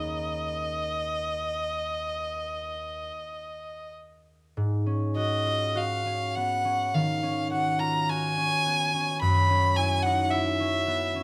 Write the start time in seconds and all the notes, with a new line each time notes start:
Already playing: D#2 A#3 C#4 D#4 G#4 A#4 D#5 A#5
4.57 G#2
4.86 C#4
5.16 F#4 D#5
5.46 F4
5.75 F#4 F5
6.05 C#4
6.36 B3 F#5
6.65 C#4
6.94 D#3 F5
7.23 C#4
7.51 F#4 F#5
7.79 F4 A#5
8.09 F#4 G#5
8.38 C#4
8.66 B3
8.94 C#4
9.21 F#2 B5
9.50 C#4
9.76 E4 G#5
10.03 D#4 F#5
10.30 E4 E5
10.60 C#4
10.87 B3
11.15 C#4